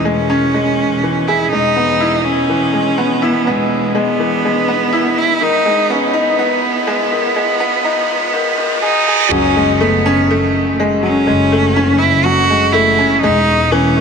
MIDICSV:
0, 0, Header, 1, 6, 480
1, 0, Start_track
1, 0, Tempo, 487805
1, 1496, Time_signature, 4, 2, 24, 8
1, 13782, End_track
2, 0, Start_track
2, 0, Title_t, "Cello"
2, 0, Program_c, 0, 42
2, 68, Note_on_c, 0, 61, 94
2, 1256, Note_on_c, 0, 64, 91
2, 1270, Note_off_c, 0, 61, 0
2, 1480, Note_off_c, 0, 64, 0
2, 1486, Note_on_c, 0, 63, 105
2, 2210, Note_on_c, 0, 61, 97
2, 2225, Note_off_c, 0, 63, 0
2, 3177, Note_on_c, 0, 59, 90
2, 3192, Note_off_c, 0, 61, 0
2, 3425, Note_on_c, 0, 56, 88
2, 3439, Note_off_c, 0, 59, 0
2, 3896, Note_on_c, 0, 59, 95
2, 3911, Note_off_c, 0, 56, 0
2, 5098, Note_on_c, 0, 64, 99
2, 5113, Note_off_c, 0, 59, 0
2, 5341, Note_on_c, 0, 63, 103
2, 5356, Note_off_c, 0, 64, 0
2, 5813, Note_on_c, 0, 61, 89
2, 5828, Note_off_c, 0, 63, 0
2, 6075, Note_on_c, 0, 59, 96
2, 6089, Note_off_c, 0, 61, 0
2, 8683, Note_off_c, 0, 59, 0
2, 8689, Note_on_c, 0, 63, 114
2, 9157, Note_on_c, 0, 61, 115
2, 9172, Note_off_c, 0, 63, 0
2, 9657, Note_on_c, 0, 59, 96
2, 9672, Note_off_c, 0, 61, 0
2, 10134, Note_on_c, 0, 57, 85
2, 10149, Note_off_c, 0, 59, 0
2, 10615, Note_off_c, 0, 57, 0
2, 10854, Note_on_c, 0, 61, 113
2, 11794, Note_on_c, 0, 64, 103
2, 11808, Note_off_c, 0, 61, 0
2, 12048, Note_on_c, 0, 66, 119
2, 12063, Note_off_c, 0, 64, 0
2, 12522, Note_on_c, 0, 64, 103
2, 12537, Note_off_c, 0, 66, 0
2, 12999, Note_off_c, 0, 64, 0
2, 13005, Note_on_c, 0, 63, 122
2, 13497, Note_on_c, 0, 61, 106
2, 13511, Note_off_c, 0, 63, 0
2, 13782, Note_off_c, 0, 61, 0
2, 13782, End_track
3, 0, Start_track
3, 0, Title_t, "Upright piano"
3, 0, Program_c, 1, 0
3, 0, Control_c, 1, 64, 127
3, 0, Note_on_c, 1, 51, 76
3, 0, Note_on_c, 1, 52, 72
3, 0, Note_on_c, 1, 56, 87
3, 0, Note_on_c, 1, 61, 95
3, 49, Note_off_c, 1, 56, 0
3, 49, Note_on_c, 1, 56, 91
3, 280, Note_off_c, 1, 56, 0
3, 292, Note_off_c, 1, 61, 0
3, 292, Note_on_c, 1, 61, 93
3, 522, Note_off_c, 1, 61, 0
3, 532, Note_on_c, 1, 56, 86
3, 671, Note_off_c, 1, 56, 0
3, 1016, Note_off_c, 1, 52, 0
3, 1016, Note_on_c, 1, 52, 69
3, 1243, Note_off_c, 1, 52, 0
3, 1260, Note_on_c, 1, 68, 92
3, 1486, Note_off_c, 1, 68, 0
3, 1500, Note_on_c, 1, 56, 79
3, 1507, Control_c, 1, 64, 0
3, 1513, Note_off_c, 1, 51, 0
3, 1706, Control_c, 1, 64, 127
3, 1726, Note_off_c, 1, 56, 0
3, 1732, Note_on_c, 1, 59, 87
3, 1962, Note_off_c, 1, 59, 0
3, 1971, Note_on_c, 1, 64, 94
3, 2201, Note_off_c, 1, 64, 0
3, 2454, Note_on_c, 1, 52, 73
3, 2683, Note_off_c, 1, 52, 0
3, 2686, Note_on_c, 1, 56, 67
3, 2919, Note_off_c, 1, 56, 0
3, 2930, Note_on_c, 1, 59, 97
3, 3161, Note_off_c, 1, 59, 0
3, 3169, Note_on_c, 1, 64, 91
3, 3400, Note_off_c, 1, 64, 0
3, 3415, Note_on_c, 1, 59, 93
3, 3552, Note_off_c, 1, 59, 0
3, 3884, Note_on_c, 1, 56, 90
3, 4118, Note_off_c, 1, 56, 0
3, 4128, Note_on_c, 1, 52, 76
3, 4269, Note_off_c, 1, 52, 0
3, 4378, Note_on_c, 1, 56, 74
3, 4604, Note_off_c, 1, 56, 0
3, 4608, Note_on_c, 1, 59, 91
3, 4840, Note_off_c, 1, 59, 0
3, 4847, Note_on_c, 1, 64, 95
3, 5080, Note_off_c, 1, 64, 0
3, 5323, Note_on_c, 1, 51, 86
3, 5348, Control_c, 1, 64, 0
3, 5502, Control_c, 1, 64, 127
3, 5557, Note_off_c, 1, 51, 0
3, 5565, Note_on_c, 1, 56, 76
3, 5798, Note_off_c, 1, 56, 0
3, 5804, Note_on_c, 1, 59, 100
3, 6036, Note_on_c, 1, 63, 101
3, 6038, Note_off_c, 1, 59, 0
3, 6274, Note_off_c, 1, 63, 0
3, 6285, Note_on_c, 1, 59, 98
3, 6427, Note_off_c, 1, 59, 0
3, 6760, Note_on_c, 1, 56, 101
3, 6996, Note_off_c, 1, 56, 0
3, 7004, Note_on_c, 1, 51, 74
3, 7147, Note_off_c, 1, 51, 0
3, 7241, Note_on_c, 1, 56, 85
3, 7476, Note_off_c, 1, 56, 0
3, 7480, Note_on_c, 1, 59, 103
3, 7716, Note_off_c, 1, 59, 0
3, 7719, Note_on_c, 1, 63, 105
3, 7955, Note_off_c, 1, 63, 0
3, 8201, Note_on_c, 1, 51, 81
3, 8428, Note_off_c, 1, 51, 0
3, 8443, Note_on_c, 1, 51, 90
3, 8677, Note_off_c, 1, 51, 0
3, 8679, Note_on_c, 1, 68, 84
3, 8915, Note_off_c, 1, 68, 0
3, 8929, Note_on_c, 1, 68, 105
3, 9160, Note_off_c, 1, 68, 0
3, 9170, Note_on_c, 1, 54, 79
3, 9188, Control_c, 1, 64, 0
3, 9330, Control_c, 1, 64, 127
3, 9401, Note_off_c, 1, 54, 0
3, 9409, Note_on_c, 1, 56, 74
3, 9640, Note_off_c, 1, 56, 0
3, 9647, Note_on_c, 1, 57, 101
3, 9879, Note_off_c, 1, 57, 0
3, 9896, Note_on_c, 1, 61, 103
3, 10124, Note_off_c, 1, 61, 0
3, 10140, Note_on_c, 1, 57, 101
3, 10275, Note_off_c, 1, 57, 0
3, 10624, Note_on_c, 1, 56, 100
3, 10848, Note_off_c, 1, 56, 0
3, 10848, Note_on_c, 1, 54, 77
3, 10989, Note_off_c, 1, 54, 0
3, 11089, Note_on_c, 1, 56, 82
3, 11320, Note_off_c, 1, 56, 0
3, 11337, Note_on_c, 1, 57, 94
3, 11564, Note_off_c, 1, 57, 0
3, 11574, Note_on_c, 1, 61, 98
3, 11803, Note_off_c, 1, 61, 0
3, 12053, Note_on_c, 1, 54, 83
3, 12282, Note_off_c, 1, 54, 0
3, 12298, Note_on_c, 1, 56, 70
3, 12525, Note_off_c, 1, 56, 0
3, 12534, Note_on_c, 1, 57, 101
3, 12763, Note_off_c, 1, 57, 0
3, 12778, Note_on_c, 1, 61, 96
3, 13005, Note_off_c, 1, 61, 0
3, 13021, Note_on_c, 1, 56, 103
3, 13029, Control_c, 1, 64, 0
3, 13155, Note_off_c, 1, 56, 0
3, 13198, Control_c, 1, 64, 127
3, 13500, Note_on_c, 1, 52, 97
3, 13726, Note_off_c, 1, 52, 0
3, 13743, Note_on_c, 1, 51, 80
3, 13782, Note_off_c, 1, 51, 0
3, 13782, End_track
4, 0, Start_track
4, 0, Title_t, "Double bass section"
4, 0, Program_c, 2, 48
4, 0, Note_on_c, 2, 28, 97
4, 830, Note_off_c, 2, 28, 0
4, 892, Note_on_c, 2, 28, 88
4, 1431, Note_off_c, 2, 28, 0
4, 1491, Note_on_c, 2, 28, 91
4, 3111, Note_off_c, 2, 28, 0
4, 3408, Note_on_c, 2, 28, 103
4, 5029, Note_off_c, 2, 28, 0
4, 5331, Note_on_c, 2, 32, 104
4, 6831, Note_off_c, 2, 32, 0
4, 6895, Note_on_c, 2, 35, 87
4, 7193, Note_off_c, 2, 35, 0
4, 7250, Note_on_c, 2, 32, 106
4, 8510, Note_off_c, 2, 32, 0
4, 8569, Note_on_c, 2, 32, 106
4, 8690, Note_on_c, 2, 30, 88
4, 8990, Note_off_c, 2, 30, 0
4, 9053, Note_on_c, 2, 37, 88
4, 9110, Note_off_c, 2, 32, 0
4, 9135, Note_off_c, 2, 37, 0
4, 9173, Note_on_c, 2, 30, 100
4, 10792, Note_off_c, 2, 30, 0
4, 11100, Note_on_c, 2, 30, 108
4, 12715, Note_off_c, 2, 30, 0
4, 13017, Note_on_c, 2, 28, 102
4, 13782, Note_off_c, 2, 28, 0
4, 13782, End_track
5, 0, Start_track
5, 0, Title_t, "Reverse cymbal"
5, 0, Program_c, 3, 119
5, 8207, Note_on_c, 3, 60, 83
5, 9171, Note_off_c, 3, 60, 0
5, 13782, End_track
6, 0, Start_track
6, 0, Title_t, "Riser"
6, 0, Program_c, 4, 103
6, 0, Note_on_c, 4, 60, 68
6, 9173, Note_off_c, 4, 60, 0
6, 13782, End_track
0, 0, End_of_file